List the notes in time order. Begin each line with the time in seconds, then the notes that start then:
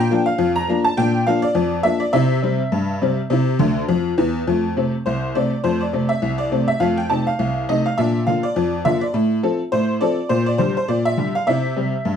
0.00 G5
0.11 F3 A#3 D4
0.26 F5
0.38 F2
0.56 A#5
0.68 F3 A#3 D4
0.84 A5
0.97 A#2 D4 G5
1.27 F3 A#3 D4 F5
1.42 D5
1.55 F2
1.83 F3 A#3 D4 E5
2.00 D5
2.13 C3 E4 E5
2.42 C3 G3 C4
2.72 G2
3.02 C3 G3 C4
3.30 C3 E4
3.59 D2 D3
3.88 F2 F3
4.18 E2 E3
4.47 F2 A3
4.77 C3 A3 C4
5.06 C2 C5
5.35 C3 A3 C4 D5
5.64 F2 A3 C5
5.81 D5
5.93 C3 A3 C4
6.09 E5
6.22 C2
6.38 D5
6.52 C3 A3 C4
6.68 E5
6.80 F2 A3 F5
6.97 G5
7.10 C3 A3 D#4 A5
7.27 F5
7.39 C2
7.69 C3 A3 D#4 D#5
7.86 F5
7.98 A#2 D4 E5
8.27 D3 A#3 F4 F5
8.43 D5
8.56 F2
8.85 D3 A#3 F4 E5
9.01 D5
9.14 A2
9.43 F3 C4 A4
9.72 A2 C5
10.01 F3 C4 A4 D5
10.29 A#2 C5
10.46 D5
10.58 D3 G3 G4 C5
10.77 C5
10.88 A#2 D5
11.05 E5
11.17 D3 G3 G4
11.35 F5
11.47 C3 E4 E5
11.76 C3 G3 G4
12.05 G2